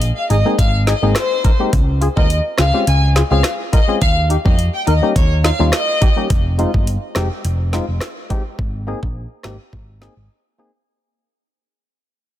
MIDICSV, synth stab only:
0, 0, Header, 1, 2, 480
1, 0, Start_track
1, 0, Tempo, 571429
1, 1454, Time_signature, 4, 2, 24, 8
1, 10414, End_track
2, 0, Start_track
2, 0, Title_t, "Synth stab"
2, 0, Program_c, 0, 62
2, 251, Note_on_c, 0, 63, 77
2, 259, Note_on_c, 0, 68, 88
2, 303, Note_off_c, 0, 63, 0
2, 308, Note_off_c, 0, 68, 0
2, 377, Note_on_c, 0, 56, 73
2, 380, Note_on_c, 0, 58, 67
2, 382, Note_on_c, 0, 60, 68
2, 384, Note_on_c, 0, 63, 65
2, 387, Note_on_c, 0, 68, 80
2, 469, Note_off_c, 0, 56, 0
2, 470, Note_off_c, 0, 58, 0
2, 472, Note_off_c, 0, 60, 0
2, 473, Note_off_c, 0, 63, 0
2, 474, Note_off_c, 0, 68, 0
2, 730, Note_on_c, 0, 63, 80
2, 739, Note_on_c, 0, 68, 85
2, 783, Note_off_c, 0, 63, 0
2, 787, Note_off_c, 0, 68, 0
2, 858, Note_on_c, 0, 56, 72
2, 860, Note_on_c, 0, 58, 71
2, 862, Note_on_c, 0, 60, 67
2, 865, Note_on_c, 0, 63, 70
2, 867, Note_on_c, 0, 68, 83
2, 950, Note_off_c, 0, 56, 0
2, 951, Note_off_c, 0, 58, 0
2, 952, Note_off_c, 0, 60, 0
2, 953, Note_off_c, 0, 63, 0
2, 954, Note_off_c, 0, 68, 0
2, 1209, Note_on_c, 0, 63, 79
2, 1219, Note_on_c, 0, 70, 86
2, 1262, Note_off_c, 0, 63, 0
2, 1267, Note_off_c, 0, 70, 0
2, 1338, Note_on_c, 0, 56, 71
2, 1340, Note_on_c, 0, 58, 66
2, 1342, Note_on_c, 0, 60, 67
2, 1344, Note_on_c, 0, 63, 66
2, 1347, Note_on_c, 0, 67, 77
2, 1430, Note_off_c, 0, 56, 0
2, 1431, Note_off_c, 0, 58, 0
2, 1432, Note_off_c, 0, 60, 0
2, 1433, Note_off_c, 0, 63, 0
2, 1434, Note_off_c, 0, 67, 0
2, 1690, Note_on_c, 0, 65, 81
2, 1699, Note_on_c, 0, 68, 90
2, 1743, Note_off_c, 0, 65, 0
2, 1747, Note_off_c, 0, 68, 0
2, 1817, Note_on_c, 0, 56, 69
2, 1819, Note_on_c, 0, 60, 65
2, 1821, Note_on_c, 0, 61, 63
2, 1824, Note_on_c, 0, 65, 65
2, 1826, Note_on_c, 0, 70, 80
2, 1909, Note_off_c, 0, 56, 0
2, 1910, Note_off_c, 0, 60, 0
2, 1912, Note_off_c, 0, 61, 0
2, 1913, Note_off_c, 0, 65, 0
2, 1914, Note_off_c, 0, 70, 0
2, 2169, Note_on_c, 0, 65, 79
2, 2179, Note_on_c, 0, 68, 88
2, 2222, Note_off_c, 0, 65, 0
2, 2227, Note_off_c, 0, 68, 0
2, 2297, Note_on_c, 0, 56, 75
2, 2299, Note_on_c, 0, 60, 65
2, 2302, Note_on_c, 0, 61, 65
2, 2304, Note_on_c, 0, 65, 66
2, 2306, Note_on_c, 0, 67, 81
2, 2389, Note_off_c, 0, 56, 0
2, 2390, Note_off_c, 0, 60, 0
2, 2391, Note_off_c, 0, 61, 0
2, 2393, Note_off_c, 0, 65, 0
2, 2394, Note_off_c, 0, 67, 0
2, 2650, Note_on_c, 0, 65, 77
2, 2660, Note_on_c, 0, 68, 84
2, 2703, Note_off_c, 0, 65, 0
2, 2708, Note_off_c, 0, 68, 0
2, 2777, Note_on_c, 0, 56, 72
2, 2780, Note_on_c, 0, 60, 67
2, 2782, Note_on_c, 0, 61, 66
2, 2784, Note_on_c, 0, 65, 67
2, 2786, Note_on_c, 0, 68, 80
2, 2870, Note_off_c, 0, 56, 0
2, 2871, Note_off_c, 0, 60, 0
2, 2872, Note_off_c, 0, 61, 0
2, 2873, Note_off_c, 0, 65, 0
2, 2874, Note_off_c, 0, 68, 0
2, 3130, Note_on_c, 0, 65, 83
2, 3139, Note_on_c, 0, 70, 84
2, 3183, Note_off_c, 0, 65, 0
2, 3187, Note_off_c, 0, 70, 0
2, 3256, Note_on_c, 0, 56, 71
2, 3259, Note_on_c, 0, 60, 65
2, 3261, Note_on_c, 0, 61, 66
2, 3263, Note_on_c, 0, 65, 62
2, 3265, Note_on_c, 0, 68, 74
2, 3349, Note_off_c, 0, 56, 0
2, 3350, Note_off_c, 0, 60, 0
2, 3351, Note_off_c, 0, 61, 0
2, 3352, Note_off_c, 0, 65, 0
2, 3353, Note_off_c, 0, 68, 0
2, 3609, Note_on_c, 0, 63, 78
2, 3618, Note_on_c, 0, 67, 83
2, 3662, Note_off_c, 0, 63, 0
2, 3667, Note_off_c, 0, 67, 0
2, 3736, Note_on_c, 0, 55, 72
2, 3738, Note_on_c, 0, 58, 63
2, 3741, Note_on_c, 0, 61, 66
2, 3743, Note_on_c, 0, 63, 64
2, 3745, Note_on_c, 0, 67, 76
2, 3829, Note_off_c, 0, 55, 0
2, 3830, Note_off_c, 0, 58, 0
2, 3831, Note_off_c, 0, 61, 0
2, 3832, Note_off_c, 0, 63, 0
2, 3833, Note_off_c, 0, 67, 0
2, 4089, Note_on_c, 0, 63, 79
2, 4098, Note_on_c, 0, 70, 87
2, 4142, Note_off_c, 0, 63, 0
2, 4147, Note_off_c, 0, 70, 0
2, 4217, Note_on_c, 0, 55, 74
2, 4219, Note_on_c, 0, 58, 69
2, 4222, Note_on_c, 0, 61, 66
2, 4224, Note_on_c, 0, 63, 69
2, 4226, Note_on_c, 0, 67, 81
2, 4309, Note_off_c, 0, 55, 0
2, 4310, Note_off_c, 0, 58, 0
2, 4312, Note_off_c, 0, 61, 0
2, 4313, Note_off_c, 0, 63, 0
2, 4314, Note_off_c, 0, 67, 0
2, 4570, Note_on_c, 0, 63, 81
2, 4579, Note_on_c, 0, 65, 86
2, 4623, Note_off_c, 0, 63, 0
2, 4627, Note_off_c, 0, 65, 0
2, 4696, Note_on_c, 0, 55, 76
2, 4699, Note_on_c, 0, 58, 70
2, 4701, Note_on_c, 0, 61, 69
2, 4703, Note_on_c, 0, 63, 70
2, 4706, Note_on_c, 0, 65, 86
2, 4789, Note_off_c, 0, 55, 0
2, 4790, Note_off_c, 0, 58, 0
2, 4791, Note_off_c, 0, 61, 0
2, 4792, Note_off_c, 0, 63, 0
2, 4794, Note_off_c, 0, 65, 0
2, 5050, Note_on_c, 0, 63, 78
2, 5059, Note_on_c, 0, 67, 88
2, 5103, Note_off_c, 0, 63, 0
2, 5107, Note_off_c, 0, 67, 0
2, 5176, Note_on_c, 0, 55, 69
2, 5179, Note_on_c, 0, 58, 62
2, 5181, Note_on_c, 0, 61, 63
2, 5183, Note_on_c, 0, 63, 65
2, 5186, Note_on_c, 0, 67, 75
2, 5269, Note_off_c, 0, 55, 0
2, 5270, Note_off_c, 0, 58, 0
2, 5271, Note_off_c, 0, 61, 0
2, 5272, Note_off_c, 0, 63, 0
2, 5274, Note_off_c, 0, 67, 0
2, 5529, Note_on_c, 0, 56, 89
2, 5532, Note_on_c, 0, 60, 81
2, 5535, Note_on_c, 0, 63, 86
2, 5538, Note_on_c, 0, 65, 99
2, 5633, Note_off_c, 0, 56, 0
2, 5635, Note_off_c, 0, 60, 0
2, 5636, Note_off_c, 0, 63, 0
2, 5638, Note_off_c, 0, 65, 0
2, 6009, Note_on_c, 0, 56, 92
2, 6012, Note_on_c, 0, 60, 84
2, 6015, Note_on_c, 0, 63, 86
2, 6018, Note_on_c, 0, 67, 103
2, 6113, Note_off_c, 0, 56, 0
2, 6115, Note_off_c, 0, 60, 0
2, 6116, Note_off_c, 0, 63, 0
2, 6118, Note_off_c, 0, 67, 0
2, 6489, Note_on_c, 0, 56, 92
2, 6492, Note_on_c, 0, 60, 84
2, 6495, Note_on_c, 0, 63, 82
2, 6498, Note_on_c, 0, 65, 102
2, 6593, Note_off_c, 0, 56, 0
2, 6595, Note_off_c, 0, 60, 0
2, 6596, Note_off_c, 0, 63, 0
2, 6598, Note_off_c, 0, 65, 0
2, 6969, Note_on_c, 0, 56, 90
2, 6972, Note_on_c, 0, 60, 85
2, 6975, Note_on_c, 0, 63, 84
2, 6979, Note_on_c, 0, 67, 106
2, 7073, Note_off_c, 0, 56, 0
2, 7075, Note_off_c, 0, 60, 0
2, 7076, Note_off_c, 0, 63, 0
2, 7078, Note_off_c, 0, 67, 0
2, 7449, Note_on_c, 0, 58, 90
2, 7452, Note_on_c, 0, 60, 82
2, 7456, Note_on_c, 0, 63, 81
2, 7459, Note_on_c, 0, 68, 101
2, 7553, Note_off_c, 0, 58, 0
2, 7555, Note_off_c, 0, 60, 0
2, 7557, Note_off_c, 0, 63, 0
2, 7558, Note_off_c, 0, 68, 0
2, 7929, Note_on_c, 0, 58, 89
2, 7932, Note_on_c, 0, 60, 82
2, 7935, Note_on_c, 0, 63, 83
2, 7939, Note_on_c, 0, 67, 98
2, 8033, Note_off_c, 0, 58, 0
2, 8035, Note_off_c, 0, 60, 0
2, 8036, Note_off_c, 0, 63, 0
2, 8038, Note_off_c, 0, 67, 0
2, 8410, Note_on_c, 0, 58, 89
2, 8413, Note_on_c, 0, 60, 85
2, 8416, Note_on_c, 0, 63, 84
2, 8419, Note_on_c, 0, 68, 100
2, 8513, Note_off_c, 0, 58, 0
2, 8515, Note_off_c, 0, 60, 0
2, 8517, Note_off_c, 0, 63, 0
2, 8518, Note_off_c, 0, 68, 0
2, 8889, Note_on_c, 0, 58, 92
2, 8892, Note_on_c, 0, 60, 84
2, 8896, Note_on_c, 0, 63, 85
2, 8899, Note_on_c, 0, 68, 100
2, 8993, Note_off_c, 0, 58, 0
2, 8995, Note_off_c, 0, 60, 0
2, 8996, Note_off_c, 0, 63, 0
2, 8998, Note_off_c, 0, 68, 0
2, 10414, End_track
0, 0, End_of_file